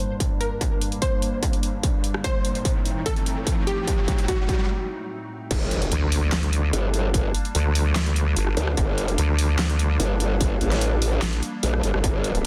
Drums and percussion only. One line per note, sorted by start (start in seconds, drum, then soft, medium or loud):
0.20 kick medium
0.20 closed hi-hat medium
0.41 closed hi-hat medium
0.61 kick medium
0.61 closed hi-hat medium
0.81 closed hi-hat medium
0.92 closed hi-hat soft
1.02 kick medium
1.02 closed hi-hat medium
1.22 closed hi-hat medium
1.43 kick loud
1.43 closed hi-hat medium
1.53 closed hi-hat soft
1.63 closed hi-hat medium
1.83 kick medium
1.83 closed hi-hat medium
2.04 closed hi-hat soft
2.14 cross-stick medium
2.24 kick loud
2.24 closed hi-hat medium
2.45 closed hi-hat medium
2.55 closed hi-hat soft
2.65 kick loud
2.65 closed hi-hat medium
2.85 closed hi-hat medium
3.06 kick loud
3.06 closed hi-hat medium
3.16 closed hi-hat soft
3.26 closed hi-hat medium
3.47 kick loud
3.47 closed hi-hat medium
3.67 closed hi-hat medium
3.88 kick loud
3.88 closed hi-hat medium
4.08 kick loud
4.08 closed hi-hat medium
4.18 closed hi-hat soft
4.28 kick loud
4.28 closed hi-hat medium
4.49 kick loud
4.49 closed hi-hat soft
5.51 kick loud
5.51 closed hi-hat medium
5.51 crash loud
5.71 closed hi-hat medium
5.82 closed hi-hat soft
5.92 closed hi-hat medium
6.12 open hi-hat medium
6.32 cross-stick medium
6.32 snare loud
6.32 clap loud
6.32 closed hi-hat medium
6.43 closed hi-hat soft
6.53 closed hi-hat medium
6.73 closed hi-hat medium
6.94 closed hi-hat medium
7.14 kick loud
7.14 closed hi-hat medium
7.34 closed hi-hat medium
7.45 closed hi-hat soft
7.55 closed hi-hat medium
7.75 open hi-hat medium
7.96 snare loud
7.96 clap loud
7.96 closed hi-hat medium
8.06 closed hi-hat soft
8.16 closed hi-hat medium
8.37 closed hi-hat medium
8.47 cross-stick medium
8.57 closed hi-hat medium
8.67 cross-stick medium
8.77 kick loud
8.77 closed hi-hat medium
8.98 closed hi-hat medium
9.08 closed hi-hat soft
9.18 closed hi-hat medium
9.39 open hi-hat medium
9.59 cross-stick medium
9.59 snare loud
9.59 clap loud
9.59 closed hi-hat medium
9.70 closed hi-hat soft
9.79 closed hi-hat medium
10.00 closed hi-hat medium
10.20 closed hi-hat medium
10.41 kick loud
10.41 closed hi-hat medium
10.61 closed hi-hat soft
10.72 snare soft
10.72 closed hi-hat soft
10.81 closed hi-hat medium
11.02 open hi-hat medium
11.22 snare loud
11.22 clap medium
11.22 closed hi-hat medium
11.33 closed hi-hat soft
11.43 closed hi-hat medium
11.63 closed hi-hat medium
11.74 cross-stick medium
11.83 closed hi-hat medium
11.94 cross-stick medium
12.04 kick loud
12.04 closed hi-hat medium
12.24 closed hi-hat medium
12.35 closed hi-hat soft